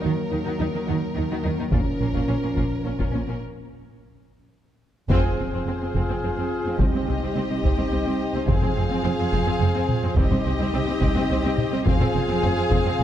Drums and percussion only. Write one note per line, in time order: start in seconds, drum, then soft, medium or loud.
1.72 taiko medium
2.14 taiko medium
2.56 taiko medium
2.99 taiko medium
5.10 taiko medium
5.94 taiko medium
6.79 taiko medium
7.63 taiko medium
8.48 taiko medium
8.62 taiko mid soft
9.33 taiko medium
9.88 taiko mid medium
10.17 taiko loud
10.31 taiko mid soft
11.01 taiko medium
11.58 taiko mid medium
11.86 taiko loud
12.00 taiko mid soft
12.71 taiko medium